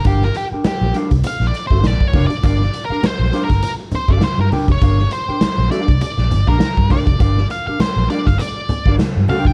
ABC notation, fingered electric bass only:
X:1
M:4/4
L:1/16
Q:"Swing 16ths" 1/4=101
K:Gm
V:1 name="Fingered electric bass" clef=bass
G,,,2 z3 B,,, z C,, z B,,, z G,,, B,,, z F,,, z | G,,,2 z3 B,,, z G,,, z3 G,,, z G,, z F,,, | G,,,2 z3 B,,, z C,, z B,,, G,,, B,,, z G,, z F,,, | G,,,2 z3 B,,, z G,,, z3 G,,, z G,, z F,,, |]